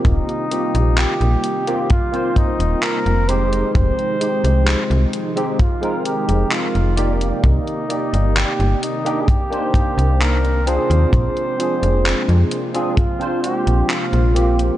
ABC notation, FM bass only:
X:1
M:4/4
L:1/16
Q:1/4=65
K:Cm
V:1 name="FM bass" clef=bass
E,,, z2 B,,, z B,,, z4 z E,,, z F,,,3 | F,,, z2 C,, z C,, z4 z F,,, z F,,,3 | C,, z2 G,,, z G,,, z4 z C,,4 E,, | B,,, z2 F,,, z F,, z4 z B,,, z B,,,3 |]